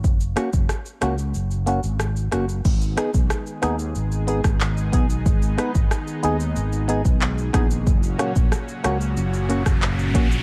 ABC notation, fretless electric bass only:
X:1
M:4/4
L:1/16
Q:1/4=92
K:G#m
V:1 name="Fretless electric bass" clef=bass
F,,,2 z F,,, z2 C,,2 F,,,3 G,,,3 F,,,2 | G,,,2 z B,,, z2 D,,2 G,,,3 G,,,3 B,,,2 | G,,,2 z G,,, z2 D,,2 G,,,3 B,,,3 A,,,2 | F,,,2 z A,,, z2 C,,2 F,,,3 F,,,3 A,,,2 |]